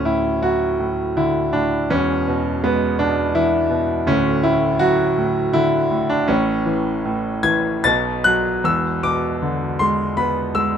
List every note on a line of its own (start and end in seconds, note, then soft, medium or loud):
0.00 1.86 D1 soft
0.00 1.86 D2 soft
0.00 1.90 C#4 medium
0.05 0.78 A2 soft
0.05 0.44 E4 medium
0.42 1.86 F#3 soft
0.42 1.19 F#4 medium
0.79 1.52 A2 soft
1.17 1.89 D3 soft
1.17 1.55 E4 medium
1.53 1.90 A2 soft
1.53 1.91 D4 medium
1.90 4.02 E1 medium
1.90 4.02 E2 medium
1.90 2.65 C#4 medium
2.28 2.97 B2 soft
2.64 4.03 G#3 soft
2.64 2.96 B3 medium
2.99 3.68 B2 soft
2.99 3.36 D4 medium
3.35 4.05 E3 medium
3.35 3.85 E4 medium
3.70 4.05 B2 medium
4.06 6.24 D1 medium
4.06 6.24 D2 medium
4.06 4.44 C#4 medium
4.43 5.16 A2 medium
4.43 4.78 E4 medium
4.79 6.25 F#3 medium
4.79 5.56 F#4 loud
5.18 5.89 A2 medium
5.53 6.26 D3 medium
5.53 6.11 E4 medium
5.91 6.27 A2 medium
6.10 6.27 D4 medium
6.28 7.81 A1 medium
6.28 7.04 A2 medium
6.28 8.21 C#4 medium
6.66 7.42 E3 medium
7.05 7.83 A2 medium
7.43 7.83 E3 medium
7.43 7.85 G#6 loud
7.84 8.61 B1 medium
7.84 8.62 B2 medium
7.84 8.26 A6 loud
8.24 8.64 F#3 medium
8.24 8.65 F#6 loud
8.64 10.78 E1 medium
8.64 10.78 E2 medium
8.64 9.05 E6 medium
9.03 10.51 B2 soft
9.03 9.82 D6 medium
9.42 10.78 D3 medium
9.79 10.54 G#3 medium
9.79 10.18 C6 medium
10.17 10.78 B3 medium
10.17 10.56 B5 medium
10.55 10.78 G#3 medium
10.55 10.78 E6 medium